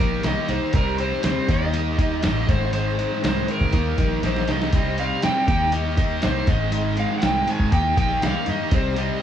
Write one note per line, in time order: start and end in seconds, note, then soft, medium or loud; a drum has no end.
0.00 0.18 A#1 medium
0.00 0.22 D#3 medium
0.00 0.73 G3 medium
0.00 0.23 A#3 medium
0.00 0.74 A#3 medium
0.00 0.73 D#4 medium
0.00 0.24 D#4 medium
0.00 0.74 G4 medium
0.00 0.28 A#4 medium
0.23 0.34 C2 medium
0.23 0.47 D#3 medium
0.23 0.48 A#3 medium
0.23 0.50 D#4 loud
0.23 0.51 D#5 medium
0.23 snare loud
0.23 closed hi-hat medium
0.48 0.59 C2 medium
0.48 0.73 D#3 medium
0.48 0.73 A#3 medium
0.48 0.75 D#4 medium
0.48 0.75 C5 medium
0.48 closed hi-hat medium
0.73 1.12 C2 medium
0.73 0.98 C3 medium
0.73 1.49 G3 medium
0.73 0.99 G3 medium
0.73 1.48 C4 medium
0.73 0.99 C4 medium
0.73 1.49 D#4 medium
0.73 1.49 G4 medium
0.73 0.99 A#4 medium
0.73 kick loud
0.73 closed hi-hat medium
0.98 1.22 C3 medium
0.98 1.23 G3 medium
0.98 1.24 C4 medium
0.98 1.24 C5 medium
0.98 closed hi-hat medium
1.12 snare soft
1.23 1.34 D2 medium
1.23 1.47 C3 medium
1.23 1.48 G3 loud
1.23 1.48 C4 loud
1.23 1.48 C5 medium
1.23 snare loud
1.23 closed hi-hat medium
1.48 2.26 D#2 medium
1.48 1.71 D#3 medium
1.48 2.49 G3 medium
1.48 1.73 A#3 medium
1.48 2.49 A#3 medium
1.48 1.74 D#4 medium
1.48 2.49 D#4 medium
1.48 2.49 G4 medium
1.48 2.24 D#5 medium
1.48 kick medium
1.48 closed hi-hat medium
1.73 1.97 D#3 medium
1.73 1.98 A#3 medium
1.73 1.99 D#4 medium
1.73 closed hi-hat medium
1.98 2.21 D#3 medium
1.98 2.22 A#3 medium
1.98 2.23 D#4 medium
1.98 kick medium
1.98 closed hi-hat medium
2.22 2.43 A1 medium
2.22 2.47 D#3 medium
2.22 2.47 A#3 medium
2.22 3.73 D#4 medium
2.22 2.51 D#5 medium
2.22 snare loud
2.22 closed hi-hat medium
2.47 3.05 G#1 medium
2.47 2.71 G#2 medium
2.47 2.72 D#3 medium
2.47 2.72 G#3 loud
2.47 2.66 A3 medium
2.47 2.65 C#4 medium
2.47 2.66 E4 medium
2.47 2.66 A4 medium
2.47 2.72 C5 medium
2.47 kick loud
2.47 closed hi-hat medium
2.64 3.72 G#3 medium
2.64 3.72 C4 medium
2.64 3.72 D#4 medium
2.64 3.72 G#4 medium
2.72 2.97 G#2 medium
2.72 2.97 D#3 medium
2.72 2.97 G#3 medium
2.72 3.24 C5 medium
2.72 closed hi-hat medium
2.98 3.22 G#2 medium
2.98 3.22 D#3 medium
2.98 3.23 G#3 medium
2.98 closed hi-hat medium
3.12 snare soft
3.23 3.43 C2 medium
3.23 3.46 G#2 medium
3.23 3.47 D#3 medium
3.23 3.48 G#3 loud
3.23 3.50 C5 medium
3.23 snare loud
3.23 closed hi-hat medium
3.48 3.72 G#2 medium
3.48 3.71 D#3 medium
3.48 3.73 G#3 medium
3.48 4.21 A#4 loud
3.48 closed hi-hat medium
3.60 3.70 D2 medium
3.60 kick medium
3.72 3.93 D#2 loud
3.72 3.97 D#3 medium
3.72 4.73 G3 medium
3.72 3.97 A#3 medium
3.72 4.73 A#3 medium
3.72 4.00 D#4 medium
3.72 4.73 D#4 medium
3.72 4.73 G4 medium
3.72 kick medium
3.72 closed hi-hat medium
3.98 4.17 A#1 medium
3.98 4.21 D#3 medium
3.98 4.22 A#3 medium
3.98 4.24 D#4 loud
3.98 kick medium
3.98 closed hi-hat medium
4.22 4.46 A#1 medium
4.22 4.47 D#3 medium
4.22 4.48 A#3 medium
4.22 4.49 D#4 medium
4.22 4.51 C5 medium
4.22 snare medium
4.22 closed hi-hat medium
4.37 snare medium
4.48 4.71 C2 medium
4.48 4.72 D#3 medium
4.48 4.73 A#3 medium
4.48 4.75 D#4 medium
4.48 5.01 D#5 medium
4.48 snare medium
4.48 closed hi-hat medium
4.62 snare medium
4.73 5.11 C2 loud
4.73 4.98 C3 medium
4.73 5.45 G3 medium
4.73 4.98 G3 medium
4.73 5.48 C4 medium
4.73 4.99 C4 medium
4.73 5.47 D#4 medium
4.73 5.47 G4 medium
4.73 kick loud
4.73 closed hi-hat medium
4.98 5.23 C3 medium
4.98 5.24 G3 medium
4.98 5.24 C4 medium
4.98 5.24 F5 medium
4.98 closed hi-hat medium
5.22 5.47 C3 medium
5.22 5.34 C3 medium
5.22 5.48 G3 medium
5.22 5.48 C4 medium
5.22 5.47 G5 medium
5.22 snare loud
5.22 closed hi-hat medium
5.47 6.26 D#2 loud
5.47 5.72 D#3 medium
5.47 6.47 G3 medium
5.47 6.47 A#3 medium
5.47 5.72 A#3 medium
5.47 6.48 D#4 medium
5.47 5.74 D#4 loud
5.47 6.47 G4 medium
5.47 5.72 G5 medium
5.47 kick loud
5.47 closed hi-hat medium
5.72 5.96 D#3 medium
5.72 5.97 A#3 medium
5.72 5.98 D#4 medium
5.72 5.96 D#5 medium
5.72 closed hi-hat medium
5.97 6.20 D#3 medium
5.97 6.21 A#3 medium
5.97 6.22 D#4 medium
5.97 6.21 D#5 medium
5.97 kick medium
5.97 closed hi-hat medium
6.22 6.43 C2 medium
6.22 6.46 D#3 medium
6.22 6.46 A#3 medium
6.22 7.73 D#4 medium
6.22 6.50 C5 medium
6.22 snare loud
6.22 closed hi-hat medium
6.47 7.04 G#1 medium
6.47 6.71 G#2 medium
6.47 6.71 D#3 medium
6.47 6.73 G#3 medium
6.47 7.70 G#3 medium
6.47 7.72 C4 medium
6.47 7.72 D#4 medium
6.47 7.70 G#4 medium
6.47 6.73 D#5 medium
6.47 kick loud
6.47 closed hi-hat medium
6.72 6.95 G#2 medium
6.72 6.96 D#3 medium
6.72 6.96 G#3 medium
6.72 6.99 D#5 medium
6.72 closed hi-hat medium
6.96 7.21 G#2 medium
6.96 7.22 D#3 medium
6.96 7.23 G#3 medium
6.96 7.18 F5 medium
6.96 closed hi-hat medium
7.10 snare soft
7.19 7.46 G#2 medium
7.19 7.24 F#5 medium
7.19 closed hi-hat medium
7.23 7.42 C2 medium
7.23 7.46 D#3 medium
7.23 7.47 G#3 loud
7.23 7.50 G5 medium
7.23 snare loud
7.47 7.71 G#2 medium
7.47 7.70 D#3 medium
7.47 7.72 G#3 loud
7.47 7.73 G#5 loud
7.47 closed hi-hat medium
7.59 7.69 G#2 medium
7.59 kick medium
7.71 7.92 D#2 loud
7.71 7.94 D#3 medium
7.71 7.89 G#3 medium
7.71 7.96 A#3 medium
7.71 7.89 B3 medium
7.71 7.97 D#4 medium
7.71 7.89 E4 medium
7.71 7.89 G#4 medium
7.71 7.98 G5 medium
7.71 kick medium
7.71 closed hi-hat medium
7.88 8.69 G3 medium
7.88 8.72 A#3 medium
7.88 8.70 D#4 medium
7.88 8.70 G4 medium
7.96 8.17 A#1 medium
7.96 8.20 D#3 medium
7.96 8.21 A#3 medium
7.96 8.22 D#4 medium
7.96 8.22 G5 loud
7.96 kick medium
7.96 closed hi-hat medium
8.21 8.32 C2 medium
8.21 8.45 D#3 medium
8.21 8.46 A#3 medium
8.21 8.48 D#4 loud
8.21 8.47 F5 medium
8.21 snare loud
8.21 closed hi-hat medium
8.46 8.57 G2 medium
8.46 8.71 D#3 medium
8.46 8.71 A#3 medium
8.46 8.73 D#4 medium
8.46 8.75 D#5 medium
8.46 closed hi-hat medium
8.70 9.10 C2 loud
8.70 8.95 C3 medium
8.70 9.22 G3 medium
8.70 8.96 G3 medium
8.70 9.22 C4 medium
8.70 8.97 C4 loud
8.70 9.22 D#4 medium
8.70 9.22 G4 medium
8.70 kick loud
8.70 closed hi-hat medium
8.75 9.00 C5 medium
8.96 9.19 C3 medium
8.96 9.20 G3 medium
8.96 9.21 C4 medium
8.96 9.22 D#5 medium
8.96 closed hi-hat medium